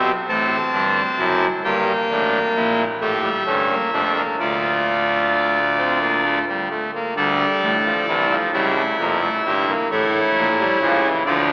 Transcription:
Already playing: B1 B2 G4
0.28 A1 A2 C4 A4 A5
0.73 G1 G2 D4
1.18 F#1 F#2 E4
1.64 G1 G2 A#3 G4 G5
2.10 A1 A2 D4
2.56 A#1 A#2 E4
3.01 A1 A2 A3 G4 E5
3.23 G3
3.46 G1 G2 A3 C#4
3.70 A#3
3.93 F1 F2 A3 D4
4.16 A#3
4.39 D1 D2 A3 F4 D5
5.78 C4
6.01 A#3
6.24 A3
6.48 G3
6.71 A3
6.95 A#3
7.16 D2 D3 G3 A4 D5
7.62 A1 A2
7.85 F3
8.07 C2 C3 E3
8.30 F3
8.53 C#2 C#3 G3 E4 E5
8.76 A3
8.99 F1 F2 A#3
9.22 A3
9.45 G1 G2 G3
9.69 A#3
9.91 A1 A2 A3 E4 C#5
10.36 A#1 A#2
10.59 G3
10.82 C#2 C#3 F3
11.04 E3
11.26 D2 D3 F3 F4 D5

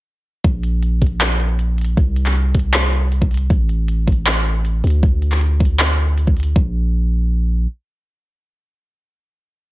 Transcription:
0.44 A#1, kick, closed hi-hat
0.63 closed hi-hat
0.83 closed hi-hat
1.02 kick, closed hi-hat
1.07 closed hi-hat
1.21 clap, closed hi-hat
1.40 closed hi-hat
1.59 closed hi-hat
1.78 closed hi-hat
1.81 closed hi-hat
1.85 closed hi-hat
1.97 C2, kick, closed hi-hat
2.16 closed hi-hat
2.26 clap
2.35 closed hi-hat
2.55 kick, closed hi-hat
2.59 closed hi-hat
2.74 clap, closed hi-hat
2.93 closed hi-hat
3.12 closed hi-hat
3.22 kick
3.31 closed hi-hat, open hi-hat
3.37 closed hi-hat
3.50 A1, kick, closed hi-hat
3.69 closed hi-hat
3.88 closed hi-hat
4.07 kick, closed hi-hat
4.12 closed hi-hat
4.27 clap, closed hi-hat
4.46 closed hi-hat
4.65 closed hi-hat
4.84 D2, closed hi-hat
4.87 closed hi-hat
4.90 closed hi-hat
5.03 kick, closed hi-hat
5.22 closed hi-hat
5.32 clap
5.41 closed hi-hat
5.60 kick, closed hi-hat
5.65 closed hi-hat
5.79 clap, closed hi-hat
5.99 closed hi-hat
6.18 closed hi-hat
6.27 kick
6.37 closed hi-hat, open hi-hat
6.43 closed hi-hat
6.56 A#1, kick

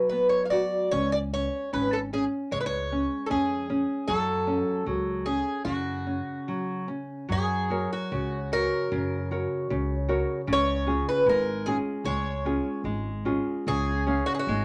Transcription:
Already playing: F#3 F#4
0.09 B3 B4
0.29 C#5
0.45 F5
0.50 F#4 D5
0.91 C#2 C#4 C#5
1.12 D5
1.34 C#4 C#5
1.73 G#1 C#4 B4
1.93 A4
2.13 C#4 G#4
2.51 C#2 G#3 C#5
2.61 B4
2.66 C#5
2.92 C#4
3.26 C#4 A4
3.31 F2 G#4
3.70 C#4
4.08 F#2 F#3 A4
4.47 C#4
4.86 C#2 F#3 G#4
5.26 C#4 G#4
5.65 F#2 C#3 F#4
6.07 C#4
6.48 F#3
6.88 C#4
7.29 F#2 F#3 G#4
7.70 F#4 A#4 C#5
7.93 F#4
8.12 C#2 C#3
8.52 F#4 A#4 C#5
8.92 F#2 C#3
9.31 F#4 A#4 C#5
9.70 C#2 C#3
10.09 F#4 A#4 C#5
10.47 C#2 C#3
10.53 C#5
10.86 C#4 F4 G#4
11.09 B4
11.26 G#1 G#3 A#4
11.66 C#4 F4 G#4
12.04 C#2 G#3 C#5
12.45 C#4 F4 G#4
12.84 G#1 G#3
13.25 C#4 F4 G#4
13.67 C#2 C#3 G#4
14.07 C#4 G#4 F5
14.26 F#4
14.35 G#4
14.39 F#4
14.47 G#1 G#3

